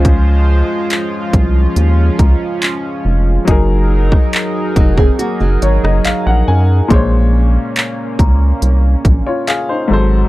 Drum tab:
HH |x---x-x-x-x-x---|x---x-x-x-x-x---|x---x-x-x-x-x---|
CP |----x-------x---|----x-------x---|----x-------x---|
SD |----------------|---r-------r----|----------------|
BD |o-----o---o-----|o--o--oo--------|o-----o---o-----|